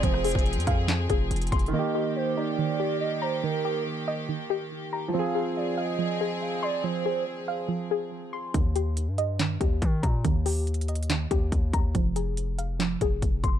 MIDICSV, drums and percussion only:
0, 0, Header, 1, 2, 480
1, 0, Start_track
1, 0, Tempo, 425532
1, 36, Time_signature, 4, 2, 24, 8
1, 15335, End_track
2, 0, Start_track
2, 0, Title_t, "Drums"
2, 37, Note_on_c, 9, 36, 113
2, 37, Note_on_c, 9, 42, 91
2, 149, Note_off_c, 9, 42, 0
2, 150, Note_off_c, 9, 36, 0
2, 156, Note_on_c, 9, 37, 92
2, 269, Note_off_c, 9, 37, 0
2, 277, Note_on_c, 9, 42, 49
2, 277, Note_on_c, 9, 46, 85
2, 356, Note_off_c, 9, 42, 0
2, 356, Note_on_c, 9, 42, 65
2, 389, Note_off_c, 9, 46, 0
2, 396, Note_on_c, 9, 36, 102
2, 437, Note_off_c, 9, 42, 0
2, 437, Note_on_c, 9, 42, 80
2, 509, Note_off_c, 9, 36, 0
2, 517, Note_off_c, 9, 42, 0
2, 517, Note_on_c, 9, 42, 54
2, 597, Note_off_c, 9, 42, 0
2, 597, Note_on_c, 9, 42, 70
2, 677, Note_off_c, 9, 42, 0
2, 677, Note_on_c, 9, 42, 87
2, 757, Note_off_c, 9, 42, 0
2, 757, Note_on_c, 9, 36, 90
2, 757, Note_on_c, 9, 37, 67
2, 757, Note_on_c, 9, 42, 83
2, 869, Note_off_c, 9, 37, 0
2, 869, Note_off_c, 9, 42, 0
2, 870, Note_off_c, 9, 36, 0
2, 996, Note_on_c, 9, 38, 126
2, 997, Note_on_c, 9, 42, 74
2, 1008, Note_on_c, 9, 39, 102
2, 1109, Note_off_c, 9, 38, 0
2, 1109, Note_off_c, 9, 42, 0
2, 1121, Note_off_c, 9, 39, 0
2, 1236, Note_on_c, 9, 42, 80
2, 1237, Note_on_c, 9, 36, 88
2, 1349, Note_off_c, 9, 42, 0
2, 1350, Note_off_c, 9, 36, 0
2, 1476, Note_on_c, 9, 42, 83
2, 1536, Note_off_c, 9, 42, 0
2, 1536, Note_on_c, 9, 42, 74
2, 1597, Note_off_c, 9, 42, 0
2, 1597, Note_on_c, 9, 42, 63
2, 1657, Note_off_c, 9, 42, 0
2, 1657, Note_on_c, 9, 42, 52
2, 1716, Note_on_c, 9, 36, 99
2, 1717, Note_off_c, 9, 42, 0
2, 1717, Note_on_c, 9, 42, 72
2, 1797, Note_off_c, 9, 42, 0
2, 1797, Note_on_c, 9, 42, 58
2, 1829, Note_off_c, 9, 36, 0
2, 1877, Note_off_c, 9, 42, 0
2, 1877, Note_on_c, 9, 42, 43
2, 1990, Note_off_c, 9, 42, 0
2, 9637, Note_on_c, 9, 36, 113
2, 9637, Note_on_c, 9, 42, 85
2, 9750, Note_off_c, 9, 36, 0
2, 9750, Note_off_c, 9, 42, 0
2, 9877, Note_on_c, 9, 42, 81
2, 9990, Note_off_c, 9, 42, 0
2, 10117, Note_on_c, 9, 42, 83
2, 10230, Note_off_c, 9, 42, 0
2, 10357, Note_on_c, 9, 42, 72
2, 10470, Note_off_c, 9, 42, 0
2, 10597, Note_on_c, 9, 38, 121
2, 10597, Note_on_c, 9, 42, 72
2, 10608, Note_on_c, 9, 39, 102
2, 10710, Note_off_c, 9, 38, 0
2, 10710, Note_off_c, 9, 42, 0
2, 10721, Note_off_c, 9, 39, 0
2, 10837, Note_on_c, 9, 36, 86
2, 10837, Note_on_c, 9, 42, 77
2, 10950, Note_off_c, 9, 36, 0
2, 10950, Note_off_c, 9, 42, 0
2, 11076, Note_on_c, 9, 36, 88
2, 11077, Note_on_c, 9, 42, 86
2, 11189, Note_off_c, 9, 36, 0
2, 11190, Note_off_c, 9, 42, 0
2, 11317, Note_on_c, 9, 36, 97
2, 11317, Note_on_c, 9, 42, 68
2, 11429, Note_off_c, 9, 36, 0
2, 11430, Note_off_c, 9, 42, 0
2, 11557, Note_on_c, 9, 36, 109
2, 11557, Note_on_c, 9, 42, 87
2, 11670, Note_off_c, 9, 36, 0
2, 11670, Note_off_c, 9, 42, 0
2, 11797, Note_on_c, 9, 46, 84
2, 11910, Note_off_c, 9, 46, 0
2, 12037, Note_on_c, 9, 42, 52
2, 12118, Note_off_c, 9, 42, 0
2, 12118, Note_on_c, 9, 42, 58
2, 12197, Note_off_c, 9, 42, 0
2, 12197, Note_on_c, 9, 42, 65
2, 12277, Note_off_c, 9, 42, 0
2, 12277, Note_on_c, 9, 42, 73
2, 12357, Note_off_c, 9, 42, 0
2, 12357, Note_on_c, 9, 42, 81
2, 12437, Note_off_c, 9, 42, 0
2, 12437, Note_on_c, 9, 42, 89
2, 12517, Note_off_c, 9, 42, 0
2, 12517, Note_on_c, 9, 38, 122
2, 12517, Note_on_c, 9, 42, 71
2, 12529, Note_on_c, 9, 39, 99
2, 12630, Note_off_c, 9, 38, 0
2, 12630, Note_off_c, 9, 42, 0
2, 12641, Note_off_c, 9, 39, 0
2, 12757, Note_on_c, 9, 36, 83
2, 12757, Note_on_c, 9, 42, 71
2, 12870, Note_off_c, 9, 36, 0
2, 12870, Note_off_c, 9, 42, 0
2, 12996, Note_on_c, 9, 36, 89
2, 12997, Note_on_c, 9, 42, 81
2, 13109, Note_off_c, 9, 36, 0
2, 13110, Note_off_c, 9, 42, 0
2, 13237, Note_on_c, 9, 36, 95
2, 13237, Note_on_c, 9, 42, 76
2, 13350, Note_off_c, 9, 36, 0
2, 13350, Note_off_c, 9, 42, 0
2, 13477, Note_on_c, 9, 36, 113
2, 13477, Note_on_c, 9, 42, 86
2, 13590, Note_off_c, 9, 36, 0
2, 13590, Note_off_c, 9, 42, 0
2, 13717, Note_on_c, 9, 42, 80
2, 13830, Note_off_c, 9, 42, 0
2, 13957, Note_on_c, 9, 42, 84
2, 14070, Note_off_c, 9, 42, 0
2, 14197, Note_on_c, 9, 42, 72
2, 14310, Note_off_c, 9, 42, 0
2, 14437, Note_on_c, 9, 38, 119
2, 14437, Note_on_c, 9, 42, 71
2, 14449, Note_on_c, 9, 39, 102
2, 14550, Note_off_c, 9, 38, 0
2, 14550, Note_off_c, 9, 42, 0
2, 14561, Note_off_c, 9, 39, 0
2, 14677, Note_on_c, 9, 36, 85
2, 14677, Note_on_c, 9, 42, 77
2, 14790, Note_off_c, 9, 36, 0
2, 14790, Note_off_c, 9, 42, 0
2, 14916, Note_on_c, 9, 36, 89
2, 14917, Note_on_c, 9, 42, 87
2, 15029, Note_off_c, 9, 36, 0
2, 15029, Note_off_c, 9, 42, 0
2, 15157, Note_on_c, 9, 36, 97
2, 15157, Note_on_c, 9, 42, 71
2, 15269, Note_off_c, 9, 36, 0
2, 15270, Note_off_c, 9, 42, 0
2, 15335, End_track
0, 0, End_of_file